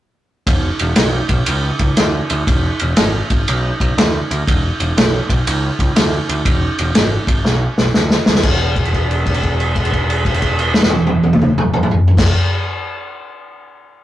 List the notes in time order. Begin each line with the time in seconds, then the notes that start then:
0.47 E1, kick, ride
0.79 E1, ride
0.96 B1, snare, ride
1.29 B1, kick, ride
1.46 C#2, ride
1.79 C#2, kick, ride
1.97 D2, snare, ride
2.30 D2, ride
2.47 E1, kick, ride
2.79 E1, ride
2.97 G#1, snare, ride
3.30 G#1, kick, ride
3.48 B1, ride
3.80 B1, kick, ride
3.98 D2, snare, ride
4.31 D2, ride
4.48 E1, kick, ride
4.80 E1, ride
4.97 B1, snare, ride
5.30 B1, kick, ride
5.47 C#2, ride
5.79 C#2, kick, ride
5.96 D2, snare, ride
6.29 D2, ride
6.45 E1, kick, ride
6.79 E1, ride
6.95 G#1, snare, ride
7.27 G#1, kick, ride
7.44 B1, snare
7.78 B1, snare
7.94 D2, snare
8.11 snare
8.26 D2, snare
8.35 snare
8.43 E1, kick, crash
8.76 kick, crash
8.85 crash
8.93 kick, crash
9.11 crash
9.26 kick, crash
9.34 crash
9.43 kick, crash
9.60 crash
9.75 kick, crash
9.85 crash
9.93 kick, crash
10.10 crash
10.25 kick, crash
10.34 crash
10.42 kick, crash
10.59 crash
10.74 snare
10.83 snare
10.90 high tom
11.07 high tom
11.24 high tom
11.33 mid tom
11.42 mid tom
11.58 mid tom
11.74 mid tom
11.83 mid tom
11.91 floor tom
12.08 floor tom
12.17 E1, kick, snare, crash